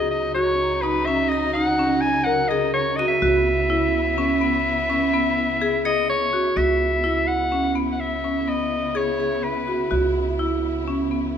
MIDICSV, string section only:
0, 0, Header, 1, 2, 480
1, 0, Start_track
1, 0, Tempo, 477707
1, 3237, Time_signature, 7, 2, 24, 8
1, 11432, End_track
2, 0, Start_track
2, 0, Title_t, "String section"
2, 0, Program_c, 0, 48
2, 0, Note_on_c, 0, 49, 68
2, 0, Note_on_c, 0, 54, 62
2, 0, Note_on_c, 0, 63, 75
2, 3198, Note_off_c, 0, 54, 0
2, 3198, Note_off_c, 0, 63, 0
2, 3235, Note_on_c, 0, 59, 62
2, 3237, Note_on_c, 0, 64, 75
2, 6548, Note_off_c, 0, 49, 0
2, 6560, Note_off_c, 0, 59, 0
2, 6562, Note_off_c, 0, 64, 0
2, 6595, Note_on_c, 0, 49, 56
2, 6596, Note_on_c, 0, 64, 67
2, 6601, Note_on_c, 0, 59, 57
2, 11432, Note_off_c, 0, 49, 0
2, 11432, Note_off_c, 0, 59, 0
2, 11432, Note_off_c, 0, 64, 0
2, 11432, End_track
0, 0, End_of_file